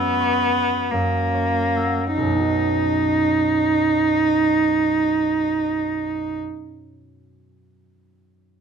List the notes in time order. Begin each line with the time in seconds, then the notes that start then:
Already playing: F#2 B3 C#5 E5 F#5 B5 E6
0.20 C#6
0.56 F#6
0.91 F#2 A#3
1.34 C#5
1.76 F#5 E6
2.14 B1 D#4
2.22 F#2
2.26 F#3
2.30 B3
2.35 D#4
2.40 F#4